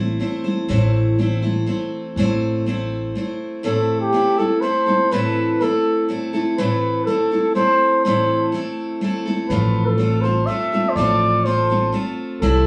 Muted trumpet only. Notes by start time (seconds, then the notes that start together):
3.65 A4
4.01 G4
4.38 A4
4.61 C5
5.12 B4
5.62 A4
6.59 B4
7.06 A4
7.56 C5
8.05 C5
9.49 B4
9.86 A4
10.22 C5
10.46 E5
10.89 C5
10.95 D5
11.45 C5
12.41 A4